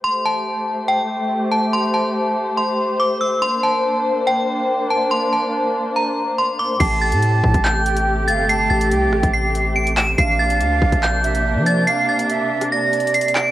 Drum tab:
CC |------------------------------------------------|------------------------------------------------|------------------------------------------------|------------------------------------------------|
HH |------------------------------------------------|------------------------------------------------|------------------------------------------------|------------------------------------------------|
CP |------------------------------------------------|------------------------------------------------|------------------------------------------------|------------------------------------------------|
SD |------------------------------------------------|------------------------------------------------|------------------------------------------------|------------------------------------------------|
BD |------------------------------------------------|------------------------------------------------|------------------------------------------------|------------------------------------------------|

CC |x-----------------------------------------------|------------------------------------------------|------------------------------------------------|------------------------------------------------|
HH |x--------x--x--------x--------x--x--------x-----|x--------x--x--------x--------x--------x--o-----|x--------x--x--------x--------x--x--------x-----|x--------x--x--------x--------x-x-x-x-x-x-------|
CP |------------------------x-----------------------|------------------------------------------x-----|------------------------x-----------------------|------------------------------------------x-----|
SD |------------------------------------------------|------------------r-----------------------------|------------------------------------------------|---------------------r--------------------------|
BD |o-----------------o--o--------------------------|---------------------o--------------------------|o-----------------o--o--------------------------|------------------------------------------------|